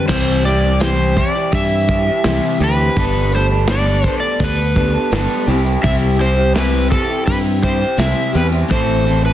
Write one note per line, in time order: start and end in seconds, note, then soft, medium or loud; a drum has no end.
0.08 1.21 C2 loud
0.08 0.79 C3 medium
0.08 0.45 E3 medium
0.08 0.44 G3 medium
0.08 0.35 C4 medium
0.08 0.44 C4 loud
0.08 0.35 E4 medium
0.08 0.45 E4 loud
0.08 0.36 G4 medium
0.08 0.46 G4 loud
0.08 0.42 C5 loud
0.08 kick loud
0.08 crash loud
0.08 tambourine soft
0.43 0.80 G3 medium
0.43 1.48 C4 medium
0.43 0.63 C4 medium
0.43 1.49 E4 medium
0.43 0.62 E4 medium
0.43 1.49 G4 medium
0.43 0.61 G4 medium
0.43 0.78 D5 medium
0.43 tambourine medium
0.62 0.79 C4 medium
0.62 0.80 E4 medium
0.62 0.81 G4 medium
0.80 1.34 C3 medium
0.80 1.17 E3 medium
0.80 1.16 G3 loud
0.80 0.98 C4 medium
0.80 0.98 E4 medium
0.80 0.97 G4 loud
0.80 1.18 C5 medium
0.80 snare loud
0.80 open hi-hat medium
0.80 tambourine medium
0.97 1.16 C4 medium
0.97 1.17 E4 medium
0.97 1.18 G4 medium
1.16 1.89 G3 medium
1.16 1.35 C4 medium
1.16 1.35 E4 medium
1.16 1.34 G4 medium
1.16 1.54 D5 medium
1.16 kick medium
1.16 tambourine medium
1.35 1.89 C4 medium
1.35 1.89 E4 medium
1.35 1.91 G4 medium
1.52 2.09 G2 medium
1.52 1.88 E3 medium
1.52 1.89 G3 medium
1.52 1.88 E4 medium
1.52 1.87 G4 medium
1.52 2.58 E5 loud
1.52 kick medium
1.52 open hi-hat medium
1.52 tambourine soft
1.88 2.24 G3 medium
1.88 2.67 C4 medium
1.88 2.07 C4 medium
1.88 2.67 E4 medium
1.88 2.06 E4 medium
1.88 2.67 G4 medium
1.88 2.06 G4 medium
1.88 kick medium
1.88 tambourine soft
2.06 2.24 C4 medium
2.06 2.24 E4 medium
2.06 2.25 G4 medium
2.24 2.39 C2 medium
2.24 2.94 C3 medium
2.24 2.61 E3 medium
2.24 2.60 G3 medium
2.24 2.60 C4 medium
2.24 2.60 E4 loud
2.24 2.62 G4 loud
2.24 snare loud
2.24 open hi-hat medium
2.24 tambourine medium
2.43 tambourine soft
2.60 2.88 D2 loud
2.60 2.96 G3 medium
2.60 2.79 C4 medium
2.60 2.78 E4 medium
2.60 2.78 G4 medium
2.60 3.35 B4 medium
2.60 tambourine medium
2.78 2.95 C4 medium
2.78 2.95 E4 medium
2.78 2.98 G4 medium
2.78 tambourine medium
2.96 4.08 G1 loud
2.96 3.32 G3 medium
2.96 3.22 B3 medium
2.96 3.32 B3 loud
2.96 3.32 D4 loud
2.96 3.23 G4 medium
2.96 3.23 A4 medium
2.96 3.33 A4 loud
2.96 kick loud
2.96 open hi-hat medium
2.96 tambourine soft
3.31 3.68 G3 medium
3.31 4.36 A3 medium
3.31 3.51 B3 medium
3.31 3.50 D4 medium
3.31 4.36 G4 medium
3.31 3.49 A4 medium
3.31 4.36 B5 medium
3.31 tambourine medium
3.36 3.45 C5 medium
3.51 3.68 B3 medium
3.51 3.69 D4 medium
3.51 3.69 A4 medium
3.68 4.04 G3 medium
3.68 3.87 B3 loud
3.68 3.86 D4 loud
3.68 3.85 A4 loud
3.68 4.14 D5 medium
3.68 snare loud
3.68 open hi-hat medium
3.68 tambourine medium
3.86 4.04 B3 medium
3.86 4.05 D4 medium
3.86 4.05 A4 medium
4.04 4.58 G3 medium
4.04 4.23 B3 medium
4.04 4.22 D4 medium
4.04 4.21 A4 medium
4.04 kick medium
4.04 tambourine medium
4.20 4.75 B3 medium
4.20 4.76 D4 medium
4.20 4.76 A4 medium
4.20 4.43 D5 medium
4.39 4.96 D2 loud
4.39 4.76 G3 medium
4.39 4.76 B3 medium
4.39 4.75 D4 medium
4.39 4.74 A4 medium
4.39 kick medium
4.39 open hi-hat medium
4.39 tambourine soft
4.44 5.46 B4 medium
4.75 5.10 G3 medium
4.75 5.48 B3 medium
4.75 4.94 B3 medium
4.75 4.93 D4 medium
4.75 5.47 G4 medium
4.75 4.92 A4 medium
4.75 5.48 B4 medium
4.75 kick medium
4.75 tambourine soft
4.94 5.11 B3 medium
4.94 5.12 D4 medium
4.94 5.13 A4 medium
5.11 5.26 G1 medium
5.11 5.45 G3 medium
5.11 5.46 B3 loud
5.11 5.46 D4 loud
5.11 5.47 A4 medium
5.11 snare loud
5.11 open hi-hat medium
5.11 tambourine medium
5.31 tambourine soft
5.46 5.76 C2 loud
5.46 5.81 C3 medium
5.46 5.82 G3 loud
5.46 6.04 C4 medium
5.46 5.66 C4 medium
5.46 6.05 E4 medium
5.46 5.65 E4 loud
5.46 6.05 G4 loud
5.46 5.63 G4 loud
5.46 tambourine medium
5.64 5.83 C4 medium
5.64 5.84 E4 medium
5.64 5.83 G4 medium
5.64 tambourine medium
5.82 6.95 C2 loud
5.82 6.53 C3 loud
5.82 6.17 G3 medium
5.82 6.19 C4 medium
5.82 6.19 E4 loud
5.82 6.19 G4 loud
5.82 5.93 E5 loud
5.82 kick loud
5.82 open hi-hat medium
5.82 tambourine soft
6.18 6.54 G3 medium
6.18 7.23 C4 medium
6.18 6.39 C4 medium
6.18 7.23 E4 medium
6.18 6.37 E4 medium
6.18 7.23 G4 medium
6.18 6.35 G4 medium
6.18 6.54 C5 medium
6.18 tambourine medium
6.36 6.55 C4 medium
6.36 6.56 E4 medium
6.36 6.55 G4 medium
6.55 7.09 C3 loud
6.55 6.89 G3 medium
6.55 6.74 C4 loud
6.55 6.73 E4 loud
6.55 6.71 G4 loud
6.55 6.89 B4 medium
6.55 snare loud
6.55 open hi-hat medium
6.55 tambourine medium
6.72 6.91 C4 medium
6.72 6.92 E4 medium
6.72 6.91 G4 medium
6.90 7.44 G3 medium
6.90 7.11 C4 medium
6.90 7.10 E4 medium
6.90 7.08 G4 medium
6.90 7.26 A4 medium
6.90 kick medium
6.90 tambourine medium
7.09 7.63 C4 soft
7.09 7.63 E4 medium
7.09 7.63 G4 medium
7.26 7.83 G2 medium
7.26 7.63 G3 medium
7.26 7.63 C4 medium
7.26 7.62 E4 medium
7.26 7.61 G4 medium
7.26 7.36 B4 loud
7.26 kick medium
7.26 open hi-hat medium
7.26 tambourine soft
7.61 7.98 G3 medium
7.61 8.40 C4 medium
7.61 7.82 C4 medium
7.61 8.40 E4 medium
7.61 7.81 E4 medium
7.61 8.41 G4 medium
7.61 7.79 G4 medium
7.61 8.00 C5 medium
7.61 kick medium
7.61 tambourine soft
7.80 7.99 C4 medium
7.80 8.00 E4 medium
7.80 7.99 G4 medium
7.98 8.12 C2 medium
7.98 8.68 C3 medium
7.98 8.32 G3 medium
7.98 8.34 C4 loud
7.98 8.35 E4 loud
7.98 8.35 G4 medium
7.98 8.32 E5 loud
7.98 snare loud
7.98 open hi-hat medium
7.98 tambourine medium
8.17 tambourine soft
8.34 8.63 E2 loud
8.34 8.68 G3 medium
8.34 8.54 C4 medium
8.34 8.53 E4 medium
8.34 8.51 G4 medium
8.34 8.46 B4 medium
8.34 tambourine medium
8.52 8.71 C4 medium
8.52 8.71 E4 medium
8.52 8.68 G4 medium
8.52 tambourine medium
8.70 9.33 A1 loud
8.70 9.33 A2 medium
8.70 9.05 E3 medium
8.70 8.96 C4 medium
8.70 9.06 C4 medium
8.70 8.97 E4 medium
8.70 9.07 E4 loud
8.70 8.97 A4 medium
8.70 9.06 A4 loud
8.70 9.25 C5 loud
8.70 kick loud
8.70 open hi-hat medium
8.70 tambourine soft
8.90 tambourine soft
9.04 9.33 E3 medium
9.04 9.33 C4 medium
9.04 9.25 C4 medium
9.04 9.33 E4 medium
9.04 9.24 E4 medium
9.04 9.33 A4 medium
9.04 9.22 A4 medium
9.04 tambourine medium
9.23 9.33 C4 medium
9.23 9.33 E4 medium
9.23 9.33 A4 medium
9.23 9.33 B4 medium